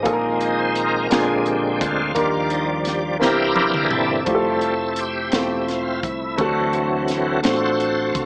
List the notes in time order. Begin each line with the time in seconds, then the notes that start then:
Already playing: D#5
0.03 A#1 A#2 D#3 G#3 A#3 D#4 F4 G#4 A4, kick, closed hi-hat
0.07 C4
0.13 A#4
0.41 D#5, closed hi-hat
0.59 C5
0.76 A#4, closed hi-hat
1.10 A#1 A#2 D3 G#3 A#3 C4 D4 F4 G#4 A#4, snare, closed hi-hat
1.46 G4, closed hi-hat
1.81 D2 F4, kick, closed hi-hat
2.15 D#2 D#3 F3 G3 A#3 D4 D#4 G4 A#4 D5, kick, closed hi-hat
2.50 D#4, closed hi-hat
2.85 G4, snare, closed hi-hat
3.20 C2 C3 E3 A#3 C4 D4 E4 G4 A#4 C5, snare
3.24 A#4
3.56 high tom
3.74 mid tom
3.84 G#4
3.91 G1 C4 A4 E5, mid tom
4.25 F1 F3 G3 A3 C4 E4 F4 G4, kick, closed hi-hat
4.35 A4
4.61 closed hi-hat
4.96 C4 G4 E5, closed hi-hat
5.32 E1 A3 C4 E4 F4 A4, snare, closed hi-hat
5.67 F4, snare, closed hi-hat
6.03 C2 E4, kick, closed hi-hat
6.36 D2 D3 E3 F#3 A3 C4 D4 F#4, kick, closed hi-hat
6.40 F#4 A4
6.73 closed hi-hat
7.08 snare, closed hi-hat
7.43 A1 A3 C4 D4 F4 F#4 A4 C5, snare, closed hi-hat
7.53 F#4
7.80 closed hi-hat
8.13 C2 F4 A4, kick, closed hi-hat